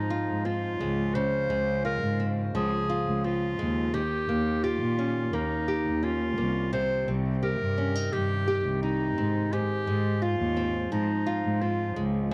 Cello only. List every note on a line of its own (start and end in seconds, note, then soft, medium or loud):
0.28 0.71 G#2 medium
0.80 1.23 C#2 medium
1.50 1.93 C#2 medium
2.02 2.45 G#2 medium
2.55 2.66 C#2 medium
3.07 3.50 C#2 medium
3.59 4.02 D#2 medium
4.29 4.72 D#2 medium
4.81 5.24 A#2 medium
5.34 5.45 D#2 medium
5.86 6.28 D#2 medium
6.38 6.81 C2 medium
7.08 7.51 C2 medium
7.61 8.03 G2 medium
8.13 8.55 G2 medium
8.65 9.08 C2 medium
9.17 9.60 G#2 medium
9.88 10.30 G#2 medium
10.39 10.82 D#2 medium
10.92 11.03 G#2 medium
11.44 11.87 G#2 medium
11.96 12.34 C#2 medium